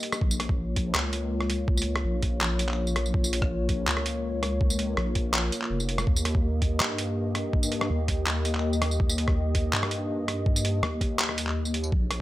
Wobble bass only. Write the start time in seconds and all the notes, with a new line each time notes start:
0.21 A#1
0.95 C#2
2.04 A#1
3.14 A#1
3.87 C#2
4.97 A#1
5.70 F1
6.07 D#2
6.80 G2
7.90 D#2
9.00 D#2
9.73 G2
10.83 D#2
11.92 A#1